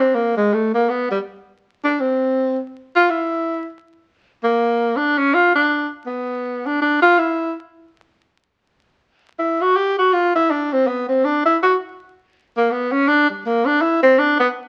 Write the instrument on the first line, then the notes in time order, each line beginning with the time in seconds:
tenor saxophone
0.00 C4
0.15 A#3
0.37 G#3
0.53 A3
0.74 A#3
0.90 B3
1.11 G3
1.84 D4
2.00 C4
2.96 F4
3.10 E4
4.44 A#3
4.97 D4
5.18 C#4
5.34 F4
5.55 D4
6.06 B3
6.66 D4
6.82 D4
7.02 F4
7.18 E4
9.39 E4
9.61 F#4
9.76 G4
9.99 F#4
10.13 F4
10.35 E4
10.51 D4
10.72 C4
10.87 B3
11.09 C4
11.25 D4
11.46 E4
11.63 F#4
12.57 A#3
12.71 B3
12.92 C#4
13.08 D4
13.30 G3
13.45 A#3
13.66 D4
13.81 E4
14.03 C4
14.19 D4
14.40 B3